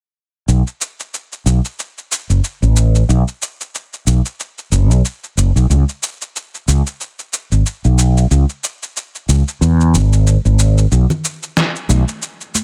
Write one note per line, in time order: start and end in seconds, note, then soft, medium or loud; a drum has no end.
0.48 0.61 B1 medium
0.48 shaker soft
0.67 shaker soft
0.81 shaker medium
1.00 shaker soft
1.14 shaker soft
1.32 shaker soft
1.46 1.59 B1 medium
1.46 shaker medium
1.65 shaker soft
1.79 shaker soft
1.98 shaker soft
2.12 shaker medium
2.30 2.40 F#1 medium
2.30 shaker soft
2.44 shaker soft
2.62 3.02 A1 medium
2.62 shaker soft
2.76 shaker medium
2.95 shaker soft
3.09 3.22 B1 medium
3.09 shaker soft
3.28 shaker soft
3.42 shaker medium
3.61 shaker soft
3.75 shaker soft
3.93 shaker soft
4.07 4.20 B1 medium
4.07 shaker medium
4.26 shaker soft
4.40 shaker soft
4.58 shaker soft
4.72 4.91 F#1 medium
4.72 shaker medium
4.91 5.01 B1 medium
4.91 shaker soft
5.05 shaker soft
5.24 shaker soft
5.37 5.50 F#1 medium
5.37 shaker medium
5.56 5.66 B1 medium
5.56 shaker soft
5.70 5.83 C#2 medium
5.70 shaker soft
5.89 shaker soft
6.03 shaker medium
6.22 shaker soft
6.36 shaker soft
6.55 shaker soft
6.68 6.81 C#2 medium
6.68 shaker medium
6.87 shaker soft
7.01 shaker soft
7.19 shaker soft
7.33 shaker medium
7.52 7.61 G#1 medium
7.52 shaker soft
7.66 shaker soft
7.85 8.24 B1 medium
7.85 shaker soft
7.99 shaker medium
8.17 shaker soft
8.31 8.44 C#2 medium
8.31 shaker soft
8.49 shaker soft
8.64 shaker medium
8.83 shaker soft
8.97 shaker soft
9.15 shaker soft
9.29 9.42 C#2 medium
9.29 shaker medium
9.48 shaker soft
9.61 9.95 E2 medium
9.61 shaker soft
9.81 shaker soft
9.94 10.36 G#1 medium
9.94 shaker medium
10.13 shaker soft
10.27 shaker soft
10.45 10.85 G#1 medium
10.45 shaker soft
10.59 shaker medium
10.78 shaker soft
10.92 11.05 B1 medium
10.92 shaker soft
11.10 low conga medium
11.10 shaker soft
11.25 shaker medium
11.43 shaker soft
11.57 snare medium
11.57 shaker soft
11.76 shaker soft
11.89 12.03 B1 medium
11.89 high conga medium
11.89 low conga medium
11.89 shaker medium
12.08 shaker soft
12.22 shaker soft
12.41 shaker soft
12.55 high conga medium
12.55 shaker medium